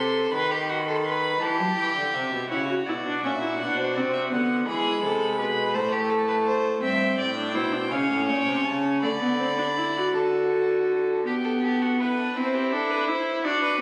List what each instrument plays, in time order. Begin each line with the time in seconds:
Already playing: cello C3, violin A4 C6
0.31 cello D#3, violin B4 B5
0.39 violin C6
0.48 violin G4 B5
0.55 violin C6
0.63 violin B5
0.69 violin F#4 C6
0.79 violin B5
0.87 violin A4 C6
0.96 violin B5
1.04 violin B4 C6
1.12 violin B5
1.40 cello E3, violin G4 A5
1.59 cello F#3
1.77 cello E3, violin G5
1.96 cello D3
2.14 cello C3, violin E5
2.33 cello B2
2.50 cello C#3, viola E4, violin F#4 C#5
2.70 viola F#4
2.86 cello B2, viola E4, violin D5
3.06 viola D4
3.23 cello A#2, viola C#4, violin E5
3.42 viola E4
3.59 cello B2, viola D4, violin F#5
3.77 violin C5
3.95 cello C3, viola C4, violin D5
4.13 violin E5
4.32 cello D3, viola B3, violin F#5
4.68 cello E3, viola G#3, violin G#4 B5
5.03 cello C3, violin A4
5.38 cello B2, violin B4
5.75 cello A2, viola A3, violin C5 A5
5.81 violin B5
5.88 violin G4 A5
6.10 violin A4
6.28 violin B4
6.46 violin C5
6.82 cello G2, viola C4, violin E5 G5
7.18 cello A2, violin D5
7.36 viola D4
7.55 cello B2, viola E4, violin C5
7.73 viola D4
7.91 cello C#3, viola C#4, violin C#5 F5
8.10 cello A2
8.28 cello A#2, violin G5
8.47 cello C3
8.65 cello C#3, violin A5
9.02 cello D3, viola A3, violin D5 B5
9.21 viola B3
9.40 viola C4
9.58 viola D4
9.78 viola E4
9.97 viola F#4
10.14 cello D3, violin A4 A5
11.26 viola B3, violin G4
11.44 violin A4
11.64 violin G4 A4
11.82 violin F#4
12.00 violin E4 B4
12.18 violin D4
12.36 viola C4, violin E4 C5
12.54 violin G4
12.72 viola D4, violin A4
12.91 violin B4
13.08 viola E4, violin C5
13.44 viola D4, violin F#4 D5
13.63 violin B4